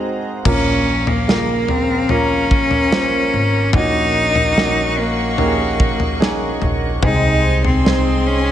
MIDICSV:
0, 0, Header, 1, 6, 480
1, 0, Start_track
1, 0, Tempo, 821918
1, 265, Time_signature, 4, 2, 24, 8
1, 4973, End_track
2, 0, Start_track
2, 0, Title_t, "String section"
2, 0, Program_c, 0, 48
2, 0, Note_on_c, 0, 68, 66
2, 0, Note_on_c, 0, 72, 63
2, 0, Note_on_c, 0, 75, 61
2, 0, Note_on_c, 0, 82, 78
2, 240, Note_off_c, 0, 68, 0
2, 240, Note_off_c, 0, 72, 0
2, 240, Note_off_c, 0, 75, 0
2, 247, Note_off_c, 0, 82, 0
2, 266, Note_on_c, 0, 82, 79
2, 267, Note_on_c, 0, 77, 67
2, 269, Note_on_c, 0, 70, 71
2, 2167, Note_off_c, 0, 77, 0
2, 2167, Note_off_c, 0, 82, 0
2, 2184, Note_on_c, 0, 78, 66
2, 2185, Note_on_c, 0, 75, 70
2, 2188, Note_on_c, 0, 85, 87
2, 4084, Note_off_c, 0, 70, 0
2, 4085, Note_off_c, 0, 78, 0
2, 4086, Note_off_c, 0, 75, 0
2, 4088, Note_off_c, 0, 85, 0
2, 4101, Note_on_c, 0, 75, 75
2, 4104, Note_on_c, 0, 84, 90
2, 4105, Note_on_c, 0, 68, 79
2, 4107, Note_on_c, 0, 72, 67
2, 4973, Note_off_c, 0, 68, 0
2, 4973, Note_off_c, 0, 72, 0
2, 4973, Note_off_c, 0, 75, 0
2, 4973, Note_off_c, 0, 84, 0
2, 4973, End_track
3, 0, Start_track
3, 0, Title_t, "Cello"
3, 0, Program_c, 1, 42
3, 277, Note_on_c, 1, 61, 79
3, 630, Note_on_c, 1, 58, 77
3, 638, Note_off_c, 1, 61, 0
3, 990, Note_on_c, 1, 60, 81
3, 999, Note_off_c, 1, 58, 0
3, 1226, Note_on_c, 1, 61, 88
3, 1235, Note_off_c, 1, 60, 0
3, 2186, Note_off_c, 1, 61, 0
3, 2190, Note_on_c, 1, 63, 101
3, 2915, Note_on_c, 1, 58, 86
3, 2924, Note_off_c, 1, 63, 0
3, 3870, Note_off_c, 1, 58, 0
3, 4115, Note_on_c, 1, 63, 84
3, 4447, Note_off_c, 1, 63, 0
3, 4468, Note_on_c, 1, 60, 79
3, 4829, Note_on_c, 1, 61, 81
3, 4838, Note_off_c, 1, 60, 0
3, 4973, Note_off_c, 1, 61, 0
3, 4973, End_track
4, 0, Start_track
4, 0, Title_t, "Grand piano"
4, 0, Program_c, 2, 0
4, 0, Control_c, 2, 64, 127
4, 0, Note_on_c, 2, 56, 80
4, 0, Note_on_c, 2, 60, 74
4, 0, Note_on_c, 2, 63, 74
4, 0, Note_on_c, 2, 66, 86
4, 0, Note_on_c, 2, 70, 76
4, 240, Note_off_c, 2, 56, 0
4, 241, Note_off_c, 2, 60, 0
4, 242, Note_off_c, 2, 63, 0
4, 242, Note_off_c, 2, 66, 0
4, 266, Note_on_c, 2, 58, 87
4, 267, Note_on_c, 2, 46, 57
4, 267, Note_on_c, 2, 53, 58
4, 267, Note_on_c, 2, 61, 74
4, 270, Note_off_c, 2, 70, 0
4, 270, Note_on_c, 2, 65, 80
4, 270, Note_on_c, 2, 70, 88
4, 273, Control_c, 2, 64, 0
4, 363, Control_c, 2, 64, 127
4, 722, Note_off_c, 2, 58, 0
4, 722, Note_off_c, 2, 61, 0
4, 723, Note_off_c, 2, 65, 0
4, 724, Note_off_c, 2, 70, 0
4, 746, Note_on_c, 2, 49, 59
4, 746, Note_on_c, 2, 58, 65
4, 748, Note_on_c, 2, 65, 55
4, 748, Note_on_c, 2, 70, 67
4, 963, Note_off_c, 2, 46, 0
4, 963, Note_off_c, 2, 53, 0
4, 1202, Note_off_c, 2, 49, 0
4, 1202, Note_off_c, 2, 58, 0
4, 1203, Note_off_c, 2, 65, 0
4, 1203, Note_off_c, 2, 70, 0
4, 1224, Note_on_c, 2, 61, 58
4, 1224, Note_on_c, 2, 65, 62
4, 1225, Note_on_c, 2, 58, 63
4, 1227, Note_on_c, 2, 70, 71
4, 1681, Note_off_c, 2, 58, 0
4, 1681, Note_off_c, 2, 61, 0
4, 1681, Note_off_c, 2, 65, 0
4, 1682, Note_off_c, 2, 70, 0
4, 1705, Note_on_c, 2, 58, 65
4, 1707, Note_on_c, 2, 61, 56
4, 1710, Note_on_c, 2, 65, 61
4, 1711, Note_on_c, 2, 72, 69
4, 2161, Note_off_c, 2, 58, 0
4, 2162, Note_off_c, 2, 61, 0
4, 2164, Note_off_c, 2, 65, 0
4, 2164, Note_off_c, 2, 72, 0
4, 2191, Note_on_c, 2, 58, 89
4, 2192, Control_c, 2, 64, 0
4, 2193, Note_on_c, 2, 61, 85
4, 2193, Note_on_c, 2, 63, 77
4, 2194, Note_on_c, 2, 46, 60
4, 2196, Note_on_c, 2, 66, 92
4, 2298, Control_c, 2, 64, 127
4, 2644, Note_off_c, 2, 58, 0
4, 2645, Note_off_c, 2, 61, 0
4, 2645, Note_off_c, 2, 63, 0
4, 2646, Note_off_c, 2, 66, 0
4, 2672, Note_on_c, 2, 61, 63
4, 2673, Note_on_c, 2, 58, 64
4, 2674, Note_on_c, 2, 63, 63
4, 2677, Note_on_c, 2, 66, 71
4, 2886, Note_off_c, 2, 46, 0
4, 3124, Note_off_c, 2, 61, 0
4, 3125, Note_off_c, 2, 58, 0
4, 3125, Note_off_c, 2, 63, 0
4, 3127, Note_off_c, 2, 66, 0
4, 3142, Note_on_c, 2, 58, 65
4, 3142, Note_on_c, 2, 61, 61
4, 3144, Note_on_c, 2, 63, 64
4, 3145, Note_on_c, 2, 67, 56
4, 3183, Note_off_c, 2, 67, 0
4, 3184, Note_on_c, 2, 68, 75
4, 3599, Note_off_c, 2, 58, 0
4, 3600, Note_off_c, 2, 61, 0
4, 3600, Note_off_c, 2, 63, 0
4, 3614, Note_off_c, 2, 68, 0
4, 3621, Note_on_c, 2, 58, 75
4, 3622, Note_on_c, 2, 61, 73
4, 3623, Note_on_c, 2, 63, 75
4, 3623, Note_on_c, 2, 68, 93
4, 4079, Note_off_c, 2, 58, 0
4, 4080, Note_off_c, 2, 61, 0
4, 4080, Note_off_c, 2, 63, 0
4, 4080, Note_off_c, 2, 68, 0
4, 4103, Note_on_c, 2, 56, 95
4, 4106, Note_on_c, 2, 60, 78
4, 4106, Note_on_c, 2, 63, 76
4, 4107, Note_on_c, 2, 48, 60
4, 4108, Note_on_c, 2, 68, 101
4, 4113, Control_c, 2, 64, 0
4, 4197, Control_c, 2, 64, 127
4, 4560, Note_off_c, 2, 56, 0
4, 4562, Note_off_c, 2, 60, 0
4, 4562, Note_off_c, 2, 63, 0
4, 4563, Note_off_c, 2, 68, 0
4, 4584, Note_on_c, 2, 56, 67
4, 4585, Note_on_c, 2, 72, 59
4, 4586, Note_on_c, 2, 63, 59
4, 4588, Note_on_c, 2, 68, 78
4, 4803, Note_off_c, 2, 48, 0
4, 4973, Note_off_c, 2, 56, 0
4, 4973, Note_off_c, 2, 63, 0
4, 4973, Note_off_c, 2, 68, 0
4, 4973, Note_off_c, 2, 72, 0
4, 4973, End_track
5, 0, Start_track
5, 0, Title_t, "Upright bass"
5, 0, Program_c, 3, 32
5, 264, Note_on_c, 3, 34, 98
5, 1921, Note_off_c, 3, 34, 0
5, 1948, Note_on_c, 3, 32, 82
5, 2170, Note_off_c, 3, 32, 0
5, 2185, Note_on_c, 3, 34, 103
5, 3842, Note_off_c, 3, 34, 0
5, 3868, Note_on_c, 3, 34, 83
5, 4090, Note_off_c, 3, 34, 0
5, 4104, Note_on_c, 3, 36, 104
5, 4973, Note_off_c, 3, 36, 0
5, 4973, End_track
6, 0, Start_track
6, 0, Title_t, "Drums"
6, 265, Note_on_c, 9, 36, 109
6, 265, Note_on_c, 9, 43, 107
6, 265, Note_on_c, 9, 49, 89
6, 323, Note_off_c, 9, 43, 0
6, 323, Note_off_c, 9, 49, 0
6, 324, Note_off_c, 9, 36, 0
6, 626, Note_on_c, 9, 43, 63
6, 684, Note_off_c, 9, 43, 0
6, 754, Note_on_c, 9, 38, 114
6, 812, Note_off_c, 9, 38, 0
6, 984, Note_on_c, 9, 43, 59
6, 1042, Note_off_c, 9, 43, 0
6, 1222, Note_on_c, 9, 43, 61
6, 1280, Note_off_c, 9, 43, 0
6, 1466, Note_on_c, 9, 36, 91
6, 1524, Note_off_c, 9, 36, 0
6, 1581, Note_on_c, 9, 43, 54
6, 1640, Note_off_c, 9, 43, 0
6, 1708, Note_on_c, 9, 38, 111
6, 1766, Note_off_c, 9, 38, 0
6, 2179, Note_on_c, 9, 43, 111
6, 2184, Note_on_c, 9, 36, 104
6, 2238, Note_off_c, 9, 43, 0
6, 2243, Note_off_c, 9, 36, 0
6, 2543, Note_on_c, 9, 43, 67
6, 2601, Note_off_c, 9, 43, 0
6, 2673, Note_on_c, 9, 38, 110
6, 2731, Note_off_c, 9, 38, 0
6, 3143, Note_on_c, 9, 43, 68
6, 3201, Note_off_c, 9, 43, 0
6, 3386, Note_on_c, 9, 36, 100
6, 3445, Note_off_c, 9, 36, 0
6, 3503, Note_on_c, 9, 43, 58
6, 3561, Note_off_c, 9, 43, 0
6, 3634, Note_on_c, 9, 38, 122
6, 3692, Note_off_c, 9, 38, 0
6, 3864, Note_on_c, 9, 43, 58
6, 3922, Note_off_c, 9, 43, 0
6, 4103, Note_on_c, 9, 43, 109
6, 4104, Note_on_c, 9, 36, 101
6, 4161, Note_off_c, 9, 43, 0
6, 4162, Note_off_c, 9, 36, 0
6, 4465, Note_on_c, 9, 43, 71
6, 4523, Note_off_c, 9, 43, 0
6, 4592, Note_on_c, 9, 38, 103
6, 4651, Note_off_c, 9, 38, 0
6, 4973, End_track
0, 0, End_of_file